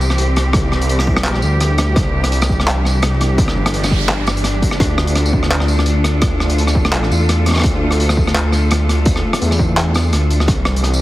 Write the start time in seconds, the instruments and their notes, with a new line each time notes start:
Already playing: detuned saw bass C2, cello section E3 G3 C4 G4
0.01 tambourine
0.10 cross-stick
0.18 detuned saw bass C2, closed hi-hat
0.36 cross-stick, closed hi-hat
0.53 kick, cross-stick, closed hi-hat
0.72 detuned saw bass C2, cross-stick
0.82 closed hi-hat
0.89 closed hi-hat
0.99 cross-stick, tambourine
1.07 kick
1.17 cross-stick
1.21 detuned saw bass B1, clap
1.25 closed hi-hat
1.34 cross-stick
1.42 detuned saw bass D2, tambourine
1.60 cross-stick, closed hi-hat
1.78 cross-stick, closed hi-hat
1.90 cello section D4
1.96 detuned saw bass C2, kick, cross-stick, closed hi-hat
2.24 cross-stick, closed hi-hat
2.32 closed hi-hat
2.42 cross-stick, tambourine
2.49 kick
2.60 cross-stick
2.67 clap, closed hi-hat
2.85 cross-stick, tambourine
3.02 detuned saw bass C2, cross-stick, closed hi-hat
3.21 cross-stick, closed hi-hat
3.38 kick, closed hi-hat, noise sweep
3.48 cross-stick
3.56 detuned saw bass G1
3.66 cross-stick, closed hi-hat
3.74 closed hi-hat
3.83 cross-stick, tambourine
3.91 kick
4.09 cross-stick, clap, closed hi-hat
4.27 cross-stick, tambourine
4.37 closed hi-hat
4.44 cross-stick, closed hi-hat
4.62 kick, closed hi-hat
4.71 cross-stick
4.80 detuned saw bass D2, cello section F4, kick, cross-stick, closed hi-hat
4.90 cello section A3
4.98 cross-stick
5.07 cello section A4, closed hi-hat
5.15 cross-stick, closed hi-hat
5.26 tambourine
5.33 kick
5.43 cross-stick
5.51 clap, closed hi-hat
5.60 cross-stick
5.68 tambourine
5.79 cross-stick
5.86 detuned saw bass D2, closed hi-hat
6.04 cross-stick, closed hi-hat
6.22 kick, cross-stick, closed hi-hat
6.40 detuned saw bass D2, cross-stick
6.50 closed hi-hat
6.58 closed hi-hat
6.67 cross-stick, tambourine
6.75 kick
6.85 cross-stick
6.93 clap, closed hi-hat
7.03 cross-stick
7.11 detuned saw bass E2, tambourine
7.29 cross-stick, closed hi-hat
7.46 cross-stick, closed hi-hat
7.49 cross-stick
7.51 cross-stick
7.54 cross-stick
7.56 cross-stick
7.58 cross-stick
7.60 cross-stick
7.62 cross-stick, closed hi-hat
7.63 detuned saw bass D2, kick, cross-stick
7.91 cross-stick, closed hi-hat
8.00 closed hi-hat
8.09 cross-stick, tambourine
8.17 kick
8.27 cross-stick
8.35 clap, closed hi-hat
8.52 cross-stick, tambourine
8.71 detuned saw bass D2, cross-stick, closed hi-hat
8.89 cross-stick, closed hi-hat
9.05 kick, closed hi-hat
9.16 cross-stick
9.33 cross-stick, closed hi-hat
9.41 detuned saw bass E2, closed hi-hat
9.51 cross-stick, tambourine
9.59 kick
9.77 cross-stick, clap, closed hi-hat
9.94 cross-stick, tambourine
10.12 detuned saw bass D2, cross-stick, closed hi-hat
10.30 closed hi-hat
10.40 cross-stick
10.48 detuned saw bass C2, cello section E3, kick, cross-stick, closed hi-hat
10.53 cello section G3 C4
10.65 cross-stick
10.76 closed hi-hat
10.84 cross-stick, closed hi-hat
10.93 cello section G4, tambourine